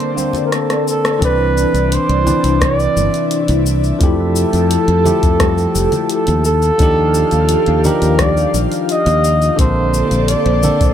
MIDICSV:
0, 0, Header, 1, 6, 480
1, 0, Start_track
1, 0, Key_signature, 0, "major"
1, 0, Tempo, 697674
1, 836, Time_signature, 4, 2, 24, 8
1, 7525, End_track
2, 0, Start_track
2, 0, Title_t, "Muted trumpet"
2, 0, Program_c, 0, 59
2, 0, Note_on_c, 0, 72, 121
2, 310, Note_off_c, 0, 72, 0
2, 314, Note_on_c, 0, 70, 61
2, 375, Note_on_c, 0, 69, 85
2, 386, Note_off_c, 0, 70, 0
2, 606, Note_off_c, 0, 69, 0
2, 615, Note_on_c, 0, 69, 89
2, 829, Note_off_c, 0, 69, 0
2, 856, Note_on_c, 0, 71, 105
2, 1329, Note_on_c, 0, 72, 107
2, 1340, Note_off_c, 0, 71, 0
2, 1811, Note_on_c, 0, 74, 108
2, 1821, Note_off_c, 0, 72, 0
2, 2523, Note_off_c, 0, 74, 0
2, 2772, Note_on_c, 0, 69, 104
2, 4177, Note_off_c, 0, 69, 0
2, 4205, Note_on_c, 0, 69, 87
2, 4424, Note_off_c, 0, 69, 0
2, 4442, Note_on_c, 0, 69, 121
2, 5403, Note_on_c, 0, 70, 95
2, 5414, Note_off_c, 0, 69, 0
2, 5647, Note_on_c, 0, 74, 111
2, 5657, Note_off_c, 0, 70, 0
2, 5936, Note_off_c, 0, 74, 0
2, 6129, Note_on_c, 0, 75, 121
2, 6575, Note_off_c, 0, 75, 0
2, 6602, Note_on_c, 0, 72, 113
2, 7078, Note_on_c, 0, 74, 105
2, 7088, Note_off_c, 0, 72, 0
2, 7525, Note_off_c, 0, 74, 0
2, 7525, End_track
3, 0, Start_track
3, 0, Title_t, "Analog synth pad"
3, 0, Program_c, 1, 89
3, 0, Note_on_c, 1, 58, 82
3, 0, Note_on_c, 1, 69, 78
3, 0, Note_on_c, 1, 72, 81
3, 0, Note_on_c, 1, 74, 96
3, 813, Note_off_c, 1, 72, 0
3, 813, Note_off_c, 1, 74, 0
3, 814, Note_off_c, 1, 58, 0
3, 814, Note_off_c, 1, 69, 0
3, 839, Note_on_c, 1, 48, 81
3, 840, Note_on_c, 1, 62, 79
3, 841, Note_on_c, 1, 64, 97
3, 841, Note_on_c, 1, 74, 80
3, 2738, Note_off_c, 1, 48, 0
3, 2739, Note_off_c, 1, 62, 0
3, 2739, Note_off_c, 1, 74, 0
3, 2766, Note_on_c, 1, 67, 74
3, 2767, Note_on_c, 1, 53, 88
3, 2767, Note_on_c, 1, 69, 92
3, 4411, Note_off_c, 1, 64, 0
3, 4424, Note_off_c, 1, 67, 0
3, 4425, Note_off_c, 1, 53, 0
3, 4425, Note_off_c, 1, 69, 0
3, 4442, Note_on_c, 1, 65, 80
3, 4442, Note_on_c, 1, 67, 95
3, 4443, Note_on_c, 1, 51, 87
3, 4448, Note_on_c, 1, 77, 78
3, 6577, Note_off_c, 1, 65, 0
3, 6578, Note_off_c, 1, 51, 0
3, 6578, Note_off_c, 1, 67, 0
3, 6580, Note_off_c, 1, 77, 0
3, 6598, Note_on_c, 1, 58, 84
3, 6599, Note_on_c, 1, 69, 79
3, 6599, Note_on_c, 1, 72, 79
3, 6601, Note_on_c, 1, 74, 95
3, 7525, Note_off_c, 1, 58, 0
3, 7525, Note_off_c, 1, 69, 0
3, 7525, Note_off_c, 1, 72, 0
3, 7525, Note_off_c, 1, 74, 0
3, 7525, End_track
4, 0, Start_track
4, 0, Title_t, "Tine electric piano"
4, 0, Program_c, 2, 4
4, 0, Control_c, 2, 64, 127
4, 0, Note_on_c, 2, 50, 75
4, 0, Note_on_c, 2, 58, 73
4, 0, Note_on_c, 2, 60, 73
4, 0, Note_on_c, 2, 69, 83
4, 100, Note_off_c, 2, 50, 0
4, 100, Note_on_c, 2, 50, 79
4, 112, Note_off_c, 2, 58, 0
4, 112, Note_on_c, 2, 58, 73
4, 122, Note_off_c, 2, 60, 0
4, 122, Note_on_c, 2, 60, 72
4, 133, Note_on_c, 2, 72, 84
4, 799, Note_off_c, 2, 50, 0
4, 805, Note_off_c, 2, 58, 0
4, 810, Note_off_c, 2, 60, 0
4, 816, Note_off_c, 2, 72, 0
4, 820, Note_on_c, 2, 52, 86
4, 832, Note_on_c, 2, 60, 79
4, 842, Note_on_c, 2, 62, 85
4, 844, Control_c, 2, 64, 0
4, 845, Note_off_c, 2, 69, 0
4, 854, Note_on_c, 2, 74, 98
4, 984, Control_c, 2, 64, 127
4, 1519, Note_off_c, 2, 52, 0
4, 1525, Note_off_c, 2, 60, 0
4, 1530, Note_off_c, 2, 62, 0
4, 1536, Note_off_c, 2, 74, 0
4, 1547, Note_on_c, 2, 52, 80
4, 1553, Note_on_c, 2, 60, 77
4, 1560, Note_on_c, 2, 62, 75
4, 1564, Note_on_c, 2, 71, 91
4, 1649, Note_off_c, 2, 52, 0
4, 1652, Note_off_c, 2, 60, 0
4, 1656, Note_off_c, 2, 62, 0
4, 1657, Note_off_c, 2, 71, 0
4, 2743, Note_on_c, 2, 53, 90
4, 2755, Note_on_c, 2, 57, 85
4, 2764, Control_c, 2, 64, 0
4, 2764, Note_on_c, 2, 64, 83
4, 2776, Note_on_c, 2, 67, 102
4, 2867, Control_c, 2, 64, 127
4, 3441, Note_off_c, 2, 53, 0
4, 3447, Note_off_c, 2, 57, 0
4, 3451, Note_off_c, 2, 64, 0
4, 3457, Note_off_c, 2, 67, 0
4, 3467, Note_on_c, 2, 53, 85
4, 3474, Note_on_c, 2, 57, 78
4, 3477, Note_on_c, 2, 64, 77
4, 3485, Note_on_c, 2, 67, 87
4, 3569, Note_off_c, 2, 53, 0
4, 3572, Note_off_c, 2, 57, 0
4, 3574, Note_off_c, 2, 64, 0
4, 3578, Note_off_c, 2, 67, 0
4, 4443, Control_c, 2, 64, 0
4, 4571, Control_c, 2, 64, 127
4, 4665, Note_on_c, 2, 53, 87
4, 4674, Note_on_c, 2, 62, 86
4, 4686, Note_on_c, 2, 63, 90
4, 4697, Note_on_c, 2, 67, 107
4, 5362, Note_off_c, 2, 53, 0
4, 5366, Note_off_c, 2, 62, 0
4, 5372, Note_off_c, 2, 63, 0
4, 5378, Note_off_c, 2, 67, 0
4, 5392, Note_on_c, 2, 53, 87
4, 5400, Note_on_c, 2, 62, 74
4, 5404, Note_on_c, 2, 63, 77
4, 5410, Note_on_c, 2, 67, 100
4, 5492, Note_off_c, 2, 53, 0
4, 5495, Note_off_c, 2, 62, 0
4, 5497, Note_off_c, 2, 63, 0
4, 5500, Note_off_c, 2, 67, 0
4, 6579, Note_on_c, 2, 50, 96
4, 6590, Note_on_c, 2, 58, 86
4, 6600, Note_on_c, 2, 60, 85
4, 6605, Control_c, 2, 64, 0
4, 6612, Note_on_c, 2, 69, 101
4, 6722, Control_c, 2, 64, 127
4, 7278, Note_off_c, 2, 50, 0
4, 7284, Note_off_c, 2, 58, 0
4, 7289, Note_off_c, 2, 60, 0
4, 7295, Note_off_c, 2, 69, 0
4, 7308, Note_on_c, 2, 50, 84
4, 7312, Note_on_c, 2, 58, 75
4, 7316, Note_on_c, 2, 60, 77
4, 7323, Note_on_c, 2, 69, 96
4, 7409, Note_off_c, 2, 50, 0
4, 7412, Note_off_c, 2, 58, 0
4, 7413, Note_off_c, 2, 60, 0
4, 7417, Note_off_c, 2, 69, 0
4, 7525, End_track
5, 0, Start_track
5, 0, Title_t, "Fingered electric bass"
5, 0, Program_c, 3, 33
5, 839, Note_on_c, 3, 36, 93
5, 1130, Note_off_c, 3, 36, 0
5, 1197, Note_on_c, 3, 36, 85
5, 1352, Note_off_c, 3, 36, 0
5, 1439, Note_on_c, 3, 36, 93
5, 1593, Note_off_c, 3, 36, 0
5, 1680, Note_on_c, 3, 36, 97
5, 1970, Note_off_c, 3, 36, 0
5, 2040, Note_on_c, 3, 31, 93
5, 2116, Note_off_c, 3, 31, 0
5, 2401, Note_on_c, 3, 36, 112
5, 2691, Note_off_c, 3, 36, 0
5, 2759, Note_on_c, 3, 41, 100
5, 3050, Note_off_c, 3, 41, 0
5, 3119, Note_on_c, 3, 41, 85
5, 3273, Note_off_c, 3, 41, 0
5, 3357, Note_on_c, 3, 41, 99
5, 3512, Note_off_c, 3, 41, 0
5, 3600, Note_on_c, 3, 41, 94
5, 3890, Note_off_c, 3, 41, 0
5, 3958, Note_on_c, 3, 29, 98
5, 4035, Note_off_c, 3, 29, 0
5, 4320, Note_on_c, 3, 39, 112
5, 4611, Note_off_c, 3, 39, 0
5, 4678, Note_on_c, 3, 39, 105
5, 4970, Note_off_c, 3, 39, 0
5, 5038, Note_on_c, 3, 39, 85
5, 5193, Note_off_c, 3, 39, 0
5, 5280, Note_on_c, 3, 39, 102
5, 5434, Note_off_c, 3, 39, 0
5, 5517, Note_on_c, 3, 39, 97
5, 5809, Note_off_c, 3, 39, 0
5, 5876, Note_on_c, 3, 34, 94
5, 5954, Note_off_c, 3, 34, 0
5, 6237, Note_on_c, 3, 39, 110
5, 6529, Note_off_c, 3, 39, 0
5, 6598, Note_on_c, 3, 34, 102
5, 6890, Note_off_c, 3, 34, 0
5, 6958, Note_on_c, 3, 34, 84
5, 7112, Note_off_c, 3, 34, 0
5, 7196, Note_on_c, 3, 34, 106
5, 7351, Note_off_c, 3, 34, 0
5, 7437, Note_on_c, 3, 34, 93
5, 7525, Note_off_c, 3, 34, 0
5, 7525, End_track
6, 0, Start_track
6, 0, Title_t, "Drums"
6, 2, Note_on_c, 9, 42, 30
6, 71, Note_off_c, 9, 42, 0
6, 118, Note_on_c, 9, 63, 53
6, 122, Note_on_c, 9, 69, 81
6, 187, Note_off_c, 9, 63, 0
6, 191, Note_off_c, 9, 69, 0
6, 229, Note_on_c, 9, 64, 80
6, 238, Note_on_c, 9, 42, 30
6, 241, Note_on_c, 9, 69, 31
6, 298, Note_off_c, 9, 64, 0
6, 307, Note_off_c, 9, 42, 0
6, 310, Note_off_c, 9, 69, 0
6, 360, Note_on_c, 9, 37, 62
6, 360, Note_on_c, 9, 42, 68
6, 363, Note_on_c, 9, 69, 42
6, 429, Note_off_c, 9, 37, 0
6, 429, Note_off_c, 9, 42, 0
6, 432, Note_off_c, 9, 69, 0
6, 482, Note_on_c, 9, 37, 58
6, 482, Note_on_c, 9, 42, 46
6, 485, Note_on_c, 9, 69, 27
6, 551, Note_off_c, 9, 37, 0
6, 551, Note_off_c, 9, 42, 0
6, 554, Note_off_c, 9, 69, 0
6, 603, Note_on_c, 9, 69, 74
6, 672, Note_off_c, 9, 69, 0
6, 722, Note_on_c, 9, 37, 76
6, 722, Note_on_c, 9, 42, 32
6, 724, Note_on_c, 9, 69, 30
6, 790, Note_off_c, 9, 37, 0
6, 790, Note_off_c, 9, 42, 0
6, 793, Note_off_c, 9, 69, 0
6, 840, Note_on_c, 9, 36, 120
6, 840, Note_on_c, 9, 42, 65
6, 843, Note_on_c, 9, 69, 43
6, 909, Note_off_c, 9, 36, 0
6, 909, Note_off_c, 9, 42, 0
6, 912, Note_off_c, 9, 69, 0
6, 1083, Note_on_c, 9, 69, 78
6, 1152, Note_off_c, 9, 69, 0
6, 1201, Note_on_c, 9, 42, 33
6, 1204, Note_on_c, 9, 69, 35
6, 1270, Note_off_c, 9, 42, 0
6, 1273, Note_off_c, 9, 69, 0
6, 1321, Note_on_c, 9, 42, 71
6, 1324, Note_on_c, 9, 69, 47
6, 1390, Note_off_c, 9, 42, 0
6, 1393, Note_off_c, 9, 69, 0
6, 1441, Note_on_c, 9, 42, 32
6, 1510, Note_off_c, 9, 42, 0
6, 1560, Note_on_c, 9, 64, 97
6, 1561, Note_on_c, 9, 69, 72
6, 1628, Note_off_c, 9, 64, 0
6, 1630, Note_off_c, 9, 69, 0
6, 1679, Note_on_c, 9, 42, 47
6, 1682, Note_on_c, 9, 69, 32
6, 1748, Note_off_c, 9, 42, 0
6, 1751, Note_off_c, 9, 69, 0
6, 1795, Note_on_c, 9, 63, 68
6, 1799, Note_on_c, 9, 36, 111
6, 1800, Note_on_c, 9, 37, 79
6, 1800, Note_on_c, 9, 42, 69
6, 1803, Note_on_c, 9, 69, 43
6, 1864, Note_off_c, 9, 63, 0
6, 1868, Note_off_c, 9, 36, 0
6, 1869, Note_off_c, 9, 37, 0
6, 1869, Note_off_c, 9, 42, 0
6, 1872, Note_off_c, 9, 69, 0
6, 1923, Note_on_c, 9, 69, 29
6, 1992, Note_off_c, 9, 69, 0
6, 2043, Note_on_c, 9, 69, 80
6, 2044, Note_on_c, 9, 63, 64
6, 2112, Note_off_c, 9, 63, 0
6, 2112, Note_off_c, 9, 69, 0
6, 2160, Note_on_c, 9, 42, 33
6, 2163, Note_on_c, 9, 69, 32
6, 2229, Note_off_c, 9, 42, 0
6, 2232, Note_off_c, 9, 69, 0
6, 2277, Note_on_c, 9, 42, 70
6, 2280, Note_on_c, 9, 69, 46
6, 2346, Note_off_c, 9, 42, 0
6, 2349, Note_off_c, 9, 69, 0
6, 2396, Note_on_c, 9, 42, 47
6, 2399, Note_on_c, 9, 69, 32
6, 2465, Note_off_c, 9, 42, 0
6, 2468, Note_off_c, 9, 69, 0
6, 2519, Note_on_c, 9, 69, 79
6, 2588, Note_off_c, 9, 69, 0
6, 2640, Note_on_c, 9, 69, 33
6, 2709, Note_off_c, 9, 69, 0
6, 2756, Note_on_c, 9, 42, 64
6, 2759, Note_on_c, 9, 36, 125
6, 2759, Note_on_c, 9, 69, 44
6, 2825, Note_off_c, 9, 42, 0
6, 2828, Note_off_c, 9, 36, 0
6, 2828, Note_off_c, 9, 69, 0
6, 2998, Note_on_c, 9, 69, 85
6, 3066, Note_off_c, 9, 69, 0
6, 3118, Note_on_c, 9, 42, 32
6, 3121, Note_on_c, 9, 69, 35
6, 3187, Note_off_c, 9, 42, 0
6, 3190, Note_off_c, 9, 69, 0
6, 3238, Note_on_c, 9, 42, 68
6, 3241, Note_on_c, 9, 69, 47
6, 3307, Note_off_c, 9, 42, 0
6, 3310, Note_off_c, 9, 69, 0
6, 3357, Note_on_c, 9, 42, 32
6, 3426, Note_off_c, 9, 42, 0
6, 3478, Note_on_c, 9, 64, 92
6, 3481, Note_on_c, 9, 69, 75
6, 3546, Note_off_c, 9, 64, 0
6, 3550, Note_off_c, 9, 69, 0
6, 3598, Note_on_c, 9, 42, 45
6, 3600, Note_on_c, 9, 36, 105
6, 3601, Note_on_c, 9, 69, 35
6, 3667, Note_off_c, 9, 42, 0
6, 3668, Note_off_c, 9, 36, 0
6, 3670, Note_off_c, 9, 69, 0
6, 3715, Note_on_c, 9, 37, 79
6, 3715, Note_on_c, 9, 42, 66
6, 3718, Note_on_c, 9, 69, 44
6, 3719, Note_on_c, 9, 36, 126
6, 3722, Note_on_c, 9, 63, 72
6, 3783, Note_off_c, 9, 37, 0
6, 3783, Note_off_c, 9, 42, 0
6, 3786, Note_off_c, 9, 69, 0
6, 3787, Note_off_c, 9, 36, 0
6, 3791, Note_off_c, 9, 63, 0
6, 3838, Note_on_c, 9, 69, 29
6, 3907, Note_off_c, 9, 69, 0
6, 3957, Note_on_c, 9, 69, 85
6, 3961, Note_on_c, 9, 63, 57
6, 4026, Note_off_c, 9, 69, 0
6, 4030, Note_off_c, 9, 63, 0
6, 4073, Note_on_c, 9, 42, 29
6, 4073, Note_on_c, 9, 64, 84
6, 4076, Note_on_c, 9, 69, 35
6, 4142, Note_off_c, 9, 42, 0
6, 4142, Note_off_c, 9, 64, 0
6, 4145, Note_off_c, 9, 69, 0
6, 4193, Note_on_c, 9, 42, 66
6, 4196, Note_on_c, 9, 69, 50
6, 4262, Note_off_c, 9, 42, 0
6, 4265, Note_off_c, 9, 69, 0
6, 4313, Note_on_c, 9, 42, 44
6, 4316, Note_on_c, 9, 69, 32
6, 4382, Note_off_c, 9, 42, 0
6, 4384, Note_off_c, 9, 69, 0
6, 4435, Note_on_c, 9, 69, 85
6, 4504, Note_off_c, 9, 69, 0
6, 4556, Note_on_c, 9, 69, 34
6, 4625, Note_off_c, 9, 69, 0
6, 4672, Note_on_c, 9, 42, 61
6, 4675, Note_on_c, 9, 69, 43
6, 4678, Note_on_c, 9, 36, 124
6, 4741, Note_off_c, 9, 42, 0
6, 4744, Note_off_c, 9, 69, 0
6, 4747, Note_off_c, 9, 36, 0
6, 4915, Note_on_c, 9, 69, 82
6, 4983, Note_off_c, 9, 69, 0
6, 5031, Note_on_c, 9, 42, 31
6, 5034, Note_on_c, 9, 69, 37
6, 5100, Note_off_c, 9, 42, 0
6, 5103, Note_off_c, 9, 69, 0
6, 5151, Note_on_c, 9, 42, 69
6, 5154, Note_on_c, 9, 69, 50
6, 5220, Note_off_c, 9, 42, 0
6, 5223, Note_off_c, 9, 69, 0
6, 5273, Note_on_c, 9, 42, 32
6, 5342, Note_off_c, 9, 42, 0
6, 5396, Note_on_c, 9, 69, 79
6, 5400, Note_on_c, 9, 64, 95
6, 5465, Note_off_c, 9, 69, 0
6, 5469, Note_off_c, 9, 64, 0
6, 5516, Note_on_c, 9, 42, 46
6, 5519, Note_on_c, 9, 69, 33
6, 5585, Note_off_c, 9, 42, 0
6, 5588, Note_off_c, 9, 69, 0
6, 5634, Note_on_c, 9, 37, 79
6, 5634, Note_on_c, 9, 42, 63
6, 5637, Note_on_c, 9, 69, 45
6, 5638, Note_on_c, 9, 36, 115
6, 5645, Note_on_c, 9, 63, 70
6, 5702, Note_off_c, 9, 37, 0
6, 5702, Note_off_c, 9, 42, 0
6, 5705, Note_off_c, 9, 69, 0
6, 5707, Note_off_c, 9, 36, 0
6, 5714, Note_off_c, 9, 63, 0
6, 5759, Note_on_c, 9, 69, 33
6, 5828, Note_off_c, 9, 69, 0
6, 5877, Note_on_c, 9, 69, 89
6, 5883, Note_on_c, 9, 63, 60
6, 5946, Note_off_c, 9, 69, 0
6, 5951, Note_off_c, 9, 63, 0
6, 5996, Note_on_c, 9, 42, 29
6, 5999, Note_on_c, 9, 69, 36
6, 6065, Note_off_c, 9, 42, 0
6, 6068, Note_off_c, 9, 69, 0
6, 6117, Note_on_c, 9, 42, 66
6, 6119, Note_on_c, 9, 69, 49
6, 6185, Note_off_c, 9, 42, 0
6, 6188, Note_off_c, 9, 69, 0
6, 6235, Note_on_c, 9, 42, 42
6, 6238, Note_on_c, 9, 69, 33
6, 6304, Note_off_c, 9, 42, 0
6, 6307, Note_off_c, 9, 69, 0
6, 6359, Note_on_c, 9, 69, 77
6, 6427, Note_off_c, 9, 69, 0
6, 6479, Note_on_c, 9, 69, 34
6, 6548, Note_off_c, 9, 69, 0
6, 6596, Note_on_c, 9, 42, 59
6, 6597, Note_on_c, 9, 36, 121
6, 6599, Note_on_c, 9, 69, 47
6, 6665, Note_off_c, 9, 42, 0
6, 6666, Note_off_c, 9, 36, 0
6, 6668, Note_off_c, 9, 69, 0
6, 6838, Note_on_c, 9, 69, 80
6, 6906, Note_off_c, 9, 69, 0
6, 6957, Note_on_c, 9, 42, 31
6, 6960, Note_on_c, 9, 69, 35
6, 7025, Note_off_c, 9, 42, 0
6, 7028, Note_off_c, 9, 69, 0
6, 7075, Note_on_c, 9, 42, 67
6, 7078, Note_on_c, 9, 69, 51
6, 7144, Note_off_c, 9, 42, 0
6, 7146, Note_off_c, 9, 69, 0
6, 7195, Note_on_c, 9, 42, 28
6, 7263, Note_off_c, 9, 42, 0
6, 7313, Note_on_c, 9, 69, 78
6, 7319, Note_on_c, 9, 64, 90
6, 7382, Note_off_c, 9, 69, 0
6, 7388, Note_off_c, 9, 64, 0
6, 7436, Note_on_c, 9, 42, 41
6, 7437, Note_on_c, 9, 36, 103
6, 7439, Note_on_c, 9, 69, 34
6, 7505, Note_off_c, 9, 42, 0
6, 7506, Note_off_c, 9, 36, 0
6, 7508, Note_off_c, 9, 69, 0
6, 7525, End_track
0, 0, End_of_file